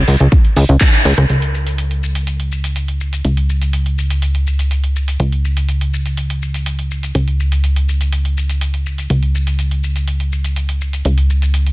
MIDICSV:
0, 0, Header, 1, 3, 480
1, 0, Start_track
1, 0, Tempo, 487805
1, 1275, Time_signature, 4, 2, 24, 8
1, 11538, End_track
2, 0, Start_track
2, 0, Title_t, "Analog synth bass"
2, 0, Program_c, 0, 38
2, 77, Note_on_c, 0, 37, 100
2, 156, Note_off_c, 0, 37, 0
2, 201, Note_on_c, 0, 37, 81
2, 275, Note_off_c, 0, 37, 0
2, 556, Note_on_c, 0, 37, 99
2, 636, Note_off_c, 0, 37, 0
2, 680, Note_on_c, 0, 37, 84
2, 755, Note_off_c, 0, 37, 0
2, 1035, Note_on_c, 0, 37, 95
2, 1115, Note_off_c, 0, 37, 0
2, 1159, Note_on_c, 0, 37, 81
2, 1234, Note_off_c, 0, 37, 0
2, 1276, Note_on_c, 0, 37, 85
2, 3172, Note_off_c, 0, 37, 0
2, 3195, Note_on_c, 0, 37, 81
2, 5092, Note_off_c, 0, 37, 0
2, 5114, Note_on_c, 0, 37, 89
2, 7012, Note_off_c, 0, 37, 0
2, 7035, Note_on_c, 0, 37, 82
2, 8932, Note_off_c, 0, 37, 0
2, 8955, Note_on_c, 0, 37, 80
2, 10852, Note_off_c, 0, 37, 0
2, 10876, Note_on_c, 0, 37, 87
2, 11538, Note_off_c, 0, 37, 0
2, 11538, End_track
3, 0, Start_track
3, 0, Title_t, "Drums"
3, 75, Note_on_c, 9, 46, 86
3, 173, Note_off_c, 9, 46, 0
3, 199, Note_on_c, 9, 42, 50
3, 297, Note_off_c, 9, 42, 0
3, 314, Note_on_c, 9, 42, 79
3, 315, Note_on_c, 9, 36, 114
3, 413, Note_off_c, 9, 42, 0
3, 414, Note_off_c, 9, 36, 0
3, 439, Note_on_c, 9, 42, 38
3, 537, Note_off_c, 9, 42, 0
3, 554, Note_on_c, 9, 46, 100
3, 653, Note_off_c, 9, 46, 0
3, 679, Note_on_c, 9, 42, 56
3, 778, Note_off_c, 9, 42, 0
3, 795, Note_on_c, 9, 36, 95
3, 795, Note_on_c, 9, 42, 83
3, 796, Note_on_c, 9, 39, 112
3, 893, Note_off_c, 9, 42, 0
3, 894, Note_off_c, 9, 36, 0
3, 894, Note_off_c, 9, 39, 0
3, 920, Note_on_c, 9, 42, 36
3, 1018, Note_off_c, 9, 42, 0
3, 1035, Note_on_c, 9, 46, 88
3, 1133, Note_off_c, 9, 46, 0
3, 1160, Note_on_c, 9, 37, 74
3, 1160, Note_on_c, 9, 42, 53
3, 1258, Note_off_c, 9, 37, 0
3, 1258, Note_off_c, 9, 42, 0
3, 1276, Note_on_c, 9, 42, 62
3, 1283, Note_on_c, 9, 82, 29
3, 1374, Note_off_c, 9, 42, 0
3, 1382, Note_off_c, 9, 82, 0
3, 1400, Note_on_c, 9, 42, 37
3, 1498, Note_off_c, 9, 42, 0
3, 1523, Note_on_c, 9, 82, 65
3, 1621, Note_off_c, 9, 82, 0
3, 1639, Note_on_c, 9, 42, 50
3, 1647, Note_on_c, 9, 82, 39
3, 1738, Note_off_c, 9, 42, 0
3, 1745, Note_off_c, 9, 82, 0
3, 1755, Note_on_c, 9, 42, 57
3, 1763, Note_on_c, 9, 82, 27
3, 1854, Note_off_c, 9, 42, 0
3, 1861, Note_off_c, 9, 82, 0
3, 1879, Note_on_c, 9, 42, 32
3, 1977, Note_off_c, 9, 42, 0
3, 2002, Note_on_c, 9, 82, 65
3, 2100, Note_off_c, 9, 82, 0
3, 2119, Note_on_c, 9, 42, 49
3, 2126, Note_on_c, 9, 82, 36
3, 2217, Note_off_c, 9, 42, 0
3, 2224, Note_off_c, 9, 82, 0
3, 2235, Note_on_c, 9, 42, 61
3, 2242, Note_on_c, 9, 82, 29
3, 2333, Note_off_c, 9, 42, 0
3, 2341, Note_off_c, 9, 82, 0
3, 2359, Note_on_c, 9, 42, 35
3, 2457, Note_off_c, 9, 42, 0
3, 2482, Note_on_c, 9, 82, 67
3, 2580, Note_off_c, 9, 82, 0
3, 2599, Note_on_c, 9, 42, 48
3, 2606, Note_on_c, 9, 82, 38
3, 2697, Note_off_c, 9, 42, 0
3, 2704, Note_off_c, 9, 82, 0
3, 2715, Note_on_c, 9, 42, 60
3, 2722, Note_on_c, 9, 82, 29
3, 2813, Note_off_c, 9, 42, 0
3, 2820, Note_off_c, 9, 82, 0
3, 2838, Note_on_c, 9, 42, 35
3, 2936, Note_off_c, 9, 42, 0
3, 2961, Note_on_c, 9, 82, 71
3, 3059, Note_off_c, 9, 82, 0
3, 3079, Note_on_c, 9, 42, 49
3, 3086, Note_on_c, 9, 82, 39
3, 3177, Note_off_c, 9, 42, 0
3, 3184, Note_off_c, 9, 82, 0
3, 3194, Note_on_c, 9, 42, 61
3, 3202, Note_on_c, 9, 82, 28
3, 3293, Note_off_c, 9, 42, 0
3, 3300, Note_off_c, 9, 82, 0
3, 3319, Note_on_c, 9, 42, 34
3, 3417, Note_off_c, 9, 42, 0
3, 3441, Note_on_c, 9, 82, 65
3, 3539, Note_off_c, 9, 82, 0
3, 3558, Note_on_c, 9, 42, 51
3, 3566, Note_on_c, 9, 82, 39
3, 3657, Note_off_c, 9, 42, 0
3, 3664, Note_off_c, 9, 82, 0
3, 3673, Note_on_c, 9, 42, 55
3, 3681, Note_on_c, 9, 82, 28
3, 3772, Note_off_c, 9, 42, 0
3, 3779, Note_off_c, 9, 82, 0
3, 3798, Note_on_c, 9, 42, 30
3, 3897, Note_off_c, 9, 42, 0
3, 3921, Note_on_c, 9, 82, 67
3, 4020, Note_off_c, 9, 82, 0
3, 4039, Note_on_c, 9, 42, 45
3, 4047, Note_on_c, 9, 82, 36
3, 4138, Note_off_c, 9, 42, 0
3, 4145, Note_off_c, 9, 82, 0
3, 4155, Note_on_c, 9, 42, 61
3, 4162, Note_on_c, 9, 82, 29
3, 4253, Note_off_c, 9, 42, 0
3, 4260, Note_off_c, 9, 82, 0
3, 4279, Note_on_c, 9, 42, 35
3, 4377, Note_off_c, 9, 42, 0
3, 4401, Note_on_c, 9, 82, 65
3, 4500, Note_off_c, 9, 82, 0
3, 4519, Note_on_c, 9, 42, 47
3, 4526, Note_on_c, 9, 82, 38
3, 4617, Note_off_c, 9, 42, 0
3, 4625, Note_off_c, 9, 82, 0
3, 4635, Note_on_c, 9, 42, 57
3, 4642, Note_on_c, 9, 82, 28
3, 4733, Note_off_c, 9, 42, 0
3, 4741, Note_off_c, 9, 82, 0
3, 4759, Note_on_c, 9, 42, 31
3, 4858, Note_off_c, 9, 42, 0
3, 4883, Note_on_c, 9, 82, 65
3, 4981, Note_off_c, 9, 82, 0
3, 4999, Note_on_c, 9, 42, 46
3, 5006, Note_on_c, 9, 82, 40
3, 5097, Note_off_c, 9, 42, 0
3, 5105, Note_off_c, 9, 82, 0
3, 5115, Note_on_c, 9, 42, 55
3, 5122, Note_on_c, 9, 82, 29
3, 5213, Note_off_c, 9, 42, 0
3, 5221, Note_off_c, 9, 82, 0
3, 5240, Note_on_c, 9, 42, 33
3, 5338, Note_off_c, 9, 42, 0
3, 5362, Note_on_c, 9, 82, 62
3, 5461, Note_off_c, 9, 82, 0
3, 5479, Note_on_c, 9, 42, 46
3, 5487, Note_on_c, 9, 82, 39
3, 5578, Note_off_c, 9, 42, 0
3, 5585, Note_off_c, 9, 82, 0
3, 5595, Note_on_c, 9, 42, 56
3, 5603, Note_on_c, 9, 82, 26
3, 5694, Note_off_c, 9, 42, 0
3, 5701, Note_off_c, 9, 82, 0
3, 5720, Note_on_c, 9, 42, 30
3, 5818, Note_off_c, 9, 42, 0
3, 5843, Note_on_c, 9, 82, 67
3, 5942, Note_off_c, 9, 82, 0
3, 5960, Note_on_c, 9, 42, 43
3, 5967, Note_on_c, 9, 82, 35
3, 6058, Note_off_c, 9, 42, 0
3, 6066, Note_off_c, 9, 82, 0
3, 6076, Note_on_c, 9, 42, 58
3, 6083, Note_on_c, 9, 82, 29
3, 6174, Note_off_c, 9, 42, 0
3, 6181, Note_off_c, 9, 82, 0
3, 6201, Note_on_c, 9, 42, 34
3, 6299, Note_off_c, 9, 42, 0
3, 6323, Note_on_c, 9, 82, 67
3, 6422, Note_off_c, 9, 82, 0
3, 6440, Note_on_c, 9, 42, 45
3, 6447, Note_on_c, 9, 82, 40
3, 6538, Note_off_c, 9, 42, 0
3, 6545, Note_off_c, 9, 82, 0
3, 6556, Note_on_c, 9, 42, 57
3, 6563, Note_on_c, 9, 82, 27
3, 6654, Note_off_c, 9, 42, 0
3, 6662, Note_off_c, 9, 82, 0
3, 6679, Note_on_c, 9, 42, 33
3, 6778, Note_off_c, 9, 42, 0
3, 6803, Note_on_c, 9, 82, 67
3, 6901, Note_off_c, 9, 82, 0
3, 6920, Note_on_c, 9, 42, 43
3, 6928, Note_on_c, 9, 82, 38
3, 7018, Note_off_c, 9, 42, 0
3, 7026, Note_off_c, 9, 82, 0
3, 7036, Note_on_c, 9, 42, 54
3, 7043, Note_on_c, 9, 82, 29
3, 7134, Note_off_c, 9, 42, 0
3, 7142, Note_off_c, 9, 82, 0
3, 7161, Note_on_c, 9, 42, 33
3, 7259, Note_off_c, 9, 42, 0
3, 7283, Note_on_c, 9, 82, 63
3, 7382, Note_off_c, 9, 82, 0
3, 7400, Note_on_c, 9, 42, 45
3, 7407, Note_on_c, 9, 82, 39
3, 7498, Note_off_c, 9, 42, 0
3, 7506, Note_off_c, 9, 82, 0
3, 7516, Note_on_c, 9, 42, 55
3, 7524, Note_on_c, 9, 82, 27
3, 7615, Note_off_c, 9, 42, 0
3, 7622, Note_off_c, 9, 82, 0
3, 7640, Note_on_c, 9, 42, 30
3, 7738, Note_off_c, 9, 42, 0
3, 7763, Note_on_c, 9, 82, 68
3, 7862, Note_off_c, 9, 82, 0
3, 7879, Note_on_c, 9, 42, 42
3, 7887, Note_on_c, 9, 82, 37
3, 7978, Note_off_c, 9, 42, 0
3, 7985, Note_off_c, 9, 82, 0
3, 7995, Note_on_c, 9, 42, 55
3, 8003, Note_on_c, 9, 82, 29
3, 8094, Note_off_c, 9, 42, 0
3, 8101, Note_off_c, 9, 82, 0
3, 8119, Note_on_c, 9, 42, 32
3, 8217, Note_off_c, 9, 42, 0
3, 8242, Note_on_c, 9, 82, 67
3, 8341, Note_off_c, 9, 82, 0
3, 8360, Note_on_c, 9, 42, 47
3, 8367, Note_on_c, 9, 82, 38
3, 8458, Note_off_c, 9, 42, 0
3, 8466, Note_off_c, 9, 82, 0
3, 8476, Note_on_c, 9, 42, 53
3, 8483, Note_on_c, 9, 82, 26
3, 8574, Note_off_c, 9, 42, 0
3, 8582, Note_off_c, 9, 82, 0
3, 8599, Note_on_c, 9, 42, 31
3, 8698, Note_off_c, 9, 42, 0
3, 8723, Note_on_c, 9, 82, 68
3, 8821, Note_off_c, 9, 82, 0
3, 8839, Note_on_c, 9, 42, 43
3, 8847, Note_on_c, 9, 82, 38
3, 8938, Note_off_c, 9, 42, 0
3, 8945, Note_off_c, 9, 82, 0
3, 8955, Note_on_c, 9, 42, 57
3, 8963, Note_on_c, 9, 82, 29
3, 9054, Note_off_c, 9, 42, 0
3, 9061, Note_off_c, 9, 82, 0
3, 9079, Note_on_c, 9, 42, 33
3, 9177, Note_off_c, 9, 42, 0
3, 9202, Note_on_c, 9, 82, 70
3, 9301, Note_off_c, 9, 82, 0
3, 9318, Note_on_c, 9, 42, 46
3, 9326, Note_on_c, 9, 82, 39
3, 9417, Note_off_c, 9, 42, 0
3, 9424, Note_off_c, 9, 82, 0
3, 9435, Note_on_c, 9, 42, 50
3, 9442, Note_on_c, 9, 82, 28
3, 9533, Note_off_c, 9, 42, 0
3, 9541, Note_off_c, 9, 82, 0
3, 9558, Note_on_c, 9, 42, 30
3, 9657, Note_off_c, 9, 42, 0
3, 9682, Note_on_c, 9, 82, 72
3, 9780, Note_off_c, 9, 82, 0
3, 9798, Note_on_c, 9, 42, 42
3, 9806, Note_on_c, 9, 82, 37
3, 9897, Note_off_c, 9, 42, 0
3, 9904, Note_off_c, 9, 82, 0
3, 9915, Note_on_c, 9, 42, 59
3, 9922, Note_on_c, 9, 82, 30
3, 10013, Note_off_c, 9, 42, 0
3, 10020, Note_off_c, 9, 82, 0
3, 10038, Note_on_c, 9, 42, 32
3, 10137, Note_off_c, 9, 42, 0
3, 10161, Note_on_c, 9, 82, 67
3, 10260, Note_off_c, 9, 82, 0
3, 10278, Note_on_c, 9, 42, 46
3, 10285, Note_on_c, 9, 82, 40
3, 10376, Note_off_c, 9, 42, 0
3, 10384, Note_off_c, 9, 82, 0
3, 10395, Note_on_c, 9, 42, 56
3, 10402, Note_on_c, 9, 82, 28
3, 10493, Note_off_c, 9, 42, 0
3, 10501, Note_off_c, 9, 82, 0
3, 10518, Note_on_c, 9, 42, 34
3, 10616, Note_off_c, 9, 42, 0
3, 10642, Note_on_c, 9, 82, 71
3, 10740, Note_off_c, 9, 82, 0
3, 10758, Note_on_c, 9, 42, 43
3, 10766, Note_on_c, 9, 82, 39
3, 10857, Note_off_c, 9, 42, 0
3, 10864, Note_off_c, 9, 82, 0
3, 10874, Note_on_c, 9, 42, 59
3, 10882, Note_on_c, 9, 82, 30
3, 10972, Note_off_c, 9, 42, 0
3, 10980, Note_off_c, 9, 82, 0
3, 10998, Note_on_c, 9, 42, 33
3, 11096, Note_off_c, 9, 42, 0
3, 11122, Note_on_c, 9, 82, 69
3, 11220, Note_off_c, 9, 82, 0
3, 11239, Note_on_c, 9, 42, 49
3, 11246, Note_on_c, 9, 82, 43
3, 11337, Note_off_c, 9, 42, 0
3, 11345, Note_off_c, 9, 82, 0
3, 11355, Note_on_c, 9, 42, 55
3, 11362, Note_on_c, 9, 82, 29
3, 11453, Note_off_c, 9, 42, 0
3, 11461, Note_off_c, 9, 82, 0
3, 11479, Note_on_c, 9, 42, 33
3, 11538, Note_off_c, 9, 42, 0
3, 11538, End_track
0, 0, End_of_file